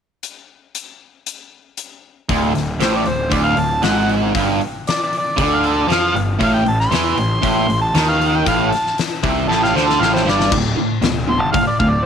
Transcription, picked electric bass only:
2.29 2.53 D1 medium
2.56 2.79 D1 medium
2.79 3.04 A1 medium
3.06 3.30 D1 medium
3.32 3.56 D1 medium
3.56 3.81 D1 medium
3.83 4.31 G#1 medium
4.35 4.59 G1 medium
5.38 5.86 D2 medium
5.88 6.13 F2 medium
6.15 6.39 G1 medium
6.41 6.65 A1 medium
6.66 6.90 A1 medium
6.91 7.16 E2 medium
7.16 7.41 A1 medium
7.43 7.67 A1 medium
7.68 7.93 A1 medium
7.94 8.43 D#2 medium
8.47 8.71 A1 medium
9.23 9.47 C2 medium
9.48 9.73 A1 medium
9.73 9.98 D2 medium
10.00 10.24 A1 medium
10.26 10.50 G1 medium
10.51 10.73 D1 medium
11.01 11.40 D1 medium
11.40 11.62 F#1 medium
11.80 12.01 D1 medium

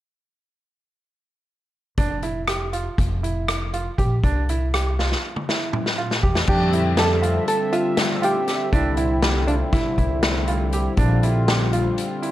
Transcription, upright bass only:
1.98 2.86 F1 medium
2.98 3.87 F1 medium
3.99 4.21 A#1 medium
4.24 5.12 C2 medium
6.23 6.45 E2 medium
6.48 7.36 F2 medium
8.73 9.61 C2 medium
9.73 9.95 C3 medium
9.98 10.86 C2 medium
10.97 11.86 A#1 medium

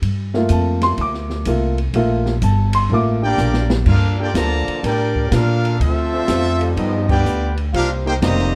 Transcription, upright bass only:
0.02 0.49 G2 medium
0.49 0.96 F2 loud
0.98 1.45 D2 loud
1.46 1.93 C2 medium
1.93 2.41 A#1 medium
2.42 2.89 G1 loud
2.90 3.37 A1 loud
3.38 3.85 A#1 medium
3.86 4.33 G2 medium
4.34 4.65 D2 medium
4.68 muted upright bass stroke soft
4.83 5.30 A2 medium
5.32 5.79 A#2 medium
5.80 6.27 D2 medium
6.28 6.75 F2 medium
6.76 7.23 G2 medium
7.25 7.71 D2 medium
7.73 8.20 C2 medium
8.22 8.55 F1 loud

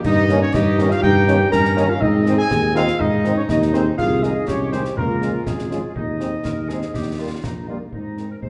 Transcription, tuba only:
0.05 0.46 G2 loud
0.54 0.95 G2 loud
1.03 1.44 G2 loud
1.52 1.93 G2 medium
2.01 2.42 G#2 loud
2.50 2.92 D#2 medium
3.00 3.41 G#2 medium
3.49 3.90 D#2 medium
3.98 4.39 C2 medium
4.48 4.89 C2 medium
4.97 5.38 C#2 medium
5.46 5.83 G#1 medium
5.96 6.37 D#2 medium
6.45 6.86 D#2 medium
6.94 7.35 D#2 medium
7.43 7.84 A#1 medium
7.93 8.34 G#2 soft
8.42 8.49 D#2 soft

